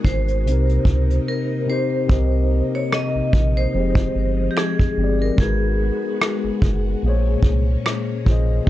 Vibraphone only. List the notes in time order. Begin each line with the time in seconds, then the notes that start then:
0.05 C5
1.28 A#4
1.70 C5
2.75 C#5
2.93 D#5
3.57 C5
4.51 G4
4.57 G#4
5.22 A#4
5.40 G#4